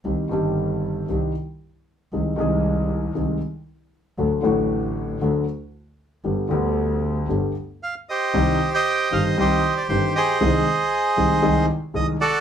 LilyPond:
<<
  \new Staff \with { instrumentName = "Bandoneon" } { \time 4/4 \key c \minor \tempo 4 = 116 << { r1 | r1 | r1 | r2. f''8 ees''8~ |
ees''8. g''8. f''8 ees''8. d''16 c''8 ees''8~ | ees''2~ ees''8 r8 ees''8 d''8 | } \\ { r1 | r1 | r1 | r2. r8 <g' c''>8~ |
<g' c''>8. <c'' ees''>4~ <c'' ees''>16 <g' c''>4. <aes' c''>8~ | <aes' c''>2~ <aes' c''>8 r4 <fis' a'>8 | } >> }
  \new Staff \with { instrumentName = "Grand piano" } { \clef bass \time 4/4 \key c \minor <c, c ees g c' g'>8 <g,, g, ees g c' g'>4. <c, c ees g c' g'>8 r4. | <c, c ees aes c' aes'>8 <c, c ees aes c' aes'>4. <c, c ees aes c' aes'>8 r4. | <d, d fis a fis'>8 <a,, a, d fis a fis'>4. <d, d fis a fis'>8 r4. | <g,, g, d g b g'>8 <d, d g b g'>4. <g,, g, d g b g'>8 r4. |
<c, c ees g c' g'>8 r4 <g,, g, ees g c' g'>8 <c, c ees g c' g'>8 r8 <g,, g, ees g c' g'>8 r8 | <c, c ees aes c' aes'>8 r4 <c, c ees aes c' aes'>8 <c, c ees aes c' aes'>8 r8 <c, c ees aes c' aes'>8 r8 | }
  \new Staff \with { instrumentName = "Double bass" } { \clef bass \time 4/4 \key c \minor c,8 g,,4. c,8 r4. | c,8 c,4. c,8 r4. | d,8 a,,4. d,8 r4. | g,,8 d,4. g,,8 r4. |
c,8 r4 g,,8 c,8 r8 g,,8 r8 | c,8 r4 c,8 c,8 r8 c,8 r8 | }
>>